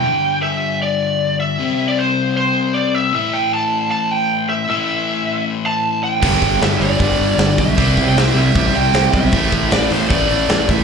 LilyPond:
<<
  \new Staff \with { instrumentName = "Lead electric guitar" } { \time 4/4 \key a \minor \tempo 4 = 155 g''4 e''4 d''4. e''8~ | e''8. d''16 c''4 c''4 d''8 e''8 | e''8 g''8 a''4 a''8 g''4 e''8 | e''2 r8 a''4 g''8~ |
g''4 e''8 d''2 e''8~ | e''8. g''16 e''8 e''4 g''4 e''8~ | e''4 d''8 c''8 d''4. e''8 | }
  \new Staff \with { instrumentName = "Distorted electric guitar" } { \clef bass \time 4/4 \key a \minor <g, d g>1 | <c g c'>1 | <a, e a>1 | <a, e a>1 |
<g, d g>1 | <c g c'>1 | <a, e a>1 | }
  \new Staff \with { instrumentName = "Distorted electric guitar" } { \clef bass \time 4/4 \key a \minor r1 | r1 | r1 | r1 |
<g, d g>4. <g, d g>2~ <g, d g>8 | <c g c'>4. <c g c'>2~ <c g c'>8 | <a, e a>4. <a, e a>2~ <a, e a>8 | }
  \new Staff \with { instrumentName = "Overdriven electric guitar" } { \clef bass \time 4/4 \key a \minor r1 | r1 | r1 | r1 |
<g, d g>2 <g, d g>2 | <c g c'>2 <c g c'>2 | <a, e a>2 <a, e a>2 | }
  \new Staff \with { instrumentName = "Fingered electric bass" } { \clef bass \time 4/4 \key a \minor r1 | r1 | r1 | r1 |
g,,8 g,,8 g,,8 g,,8 g,,8 g,,8 g,,8 b,,8 | c,8 c8 c,8 c,8 a,,8 c,8 c,8 b,,8 | a,,8 a,,8 a,,8 a,,8 a,,8 a,,8 a,,8 a,,8 | }
  \new DrumStaff \with { instrumentName = "Drums" } \drummode { \time 4/4 r4 r4 r4 r4 | r4 r4 r4 r4 | r4 r4 r4 r4 | r4 r4 r4 r4 |
<cymc bd>8 <hho bd>8 <hho sn>8 hho8 <hho bd>8 hho8 <hho sn>8 <hho bd>8 | <hho bd>8 <hho bd>8 <hho sn>8 hho8 <hho bd>8 hho8 <hho sn>8 <hho bd>8 | <hho bd>8 <hho bd>8 <hho sn>8 hho8 <hho bd>8 hho8 <hho sn>8 <hho bd>8 | }
>>